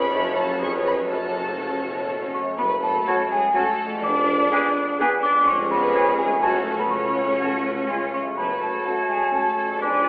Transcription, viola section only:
0.12 0.60 C#4 medium
0.12 0.61 F#4 medium
0.61 1.09 C#4 medium
0.61 1.10 G#4 soft
1.11 2.36 C#4 soft
1.11 2.36 F#4 soft
3.07 3.15 C#4 medium
3.07 3.15 F#4 medium
3.56 3.64 C#4 medium
3.56 3.64 F#4 soft
4.52 4.60 B3 soft
4.52 4.60 D4 medium
5.00 5.08 B3 medium
5.00 5.08 D4 medium
5.48 6.38 G#3 medium
5.48 6.38 C#4 medium
6.43 6.90 A3 medium
6.43 6.90 C#4 soft
6.91 7.87 A3 soft
6.91 7.87 C#4 soft
7.89 8.17 G#3 soft
7.89 7.98 C#4 soft
8.86 9.21 A3 soft
8.86 9.21 C#4 soft
9.33 9.69 A3 soft
9.33 9.69 C#4 soft

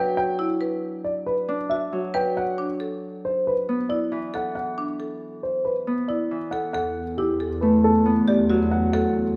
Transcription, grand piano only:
0.00 0.16 G5 medium
0.17 0.46 G5 medium
1.04 1.33 D5 medium
1.26 1.55 B4 medium
1.70 1.99 E5 medium
2.15 2.43 G5 medium
2.37 2.65 F#5 medium
3.25 3.53 C5 soft
3.47 3.75 B4 soft
3.89 4.18 D5 medium
4.35 4.54 F#5 medium
4.55 4.84 F#5 medium
5.43 5.72 C5 soft
5.65 5.93 B4 soft
6.08 6.37 D5 soft
6.51 6.72 F#5 medium
6.73 7.03 F#5 medium
7.18 7.47 G4 medium
7.61 7.90 B4 soft
7.84 8.13 A4 medium
8.28 8.57 D5 medium
8.71 8.92 F#5 medium
8.93 9.22 F#5 medium

